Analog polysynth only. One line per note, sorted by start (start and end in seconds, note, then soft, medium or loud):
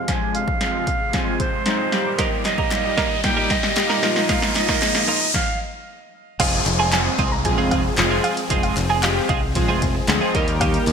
0.08 0.34 F3 medium
0.08 0.34 G#3 medium
0.08 0.34 C4 medium
0.08 0.34 D4 medium
0.60 0.87 F3 medium
0.60 0.87 G#3 medium
0.60 0.87 C4 medium
0.60 0.87 F4 medium
1.13 1.39 F3 medium
1.13 1.39 G#3 medium
1.13 1.39 C4 medium
1.13 1.39 F4 medium
1.66 1.92 F3 medium
1.66 1.92 G#3 medium
1.66 1.92 C4 medium
1.66 1.91 D#4 medium
1.92 2.55 G3 medium
1.92 2.55 A#3 medium
1.92 2.56 D#4 medium
1.92 2.56 G4 medium
2.71 2.97 G3 medium
2.71 2.97 A#3 medium
2.71 2.97 D#4 medium
2.71 2.97 G4 medium
3.24 3.50 G3 medium
3.24 3.50 A#3 medium
3.24 3.50 D#4 medium
3.24 3.50 G4 medium
3.76 4.02 G3 medium
3.76 4.02 A#3 medium
3.76 4.02 D#4 medium
3.76 4.03 G4 loud
4.03 4.66 F3 medium
4.03 4.66 A#3 medium
4.03 4.66 D#4 medium
4.03 4.66 F4 medium
4.81 5.08 F3 medium
4.81 5.08 A#3 medium
4.81 5.08 D#4 medium
4.81 5.08 G#4 medium
6.40 6.66 F3 medium
6.40 6.66 G#3 medium
6.40 6.66 C4 medium
6.40 6.66 F4 medium
6.40 6.66 G#4 loud
6.92 7.18 F3 medium
6.92 7.18 G#3 medium
6.92 7.18 C4 medium
6.92 7.18 F4 medium
6.92 7.19 G#4 medium
7.45 7.71 F3 medium
7.45 7.71 G#3 medium
7.45 7.71 C4 medium
7.45 7.71 F4 medium
7.45 7.71 G#4 medium
7.97 8.24 F3 loud
7.97 8.24 G#3 loud
7.97 8.24 C4 loud
7.97 8.24 F4 loud
7.97 8.24 G#4 loud
8.50 8.76 F3 medium
8.50 8.76 G#3 medium
8.50 8.76 C4 medium
8.50 8.76 F4 medium
8.50 8.76 G#4 medium
9.03 9.29 F3 medium
9.03 9.29 G#3 medium
9.03 9.29 C4 medium
9.03 9.29 F4 medium
9.03 9.29 G4 loud
9.56 9.82 F3 medium
9.56 9.82 G#3 medium
9.56 9.82 C4 medium
9.56 9.82 F4 medium
9.56 9.82 G#4 loud
10.08 10.34 F3 medium
10.08 10.34 G#3 medium
10.08 10.34 C4 medium
10.08 10.34 F4 medium
10.08 10.34 G#4 loud
10.34 10.93 G3 loud
10.34 10.93 A#3 medium
10.34 10.93 D#4 medium
10.34 10.93 G4 medium
10.34 10.93 A#4 loud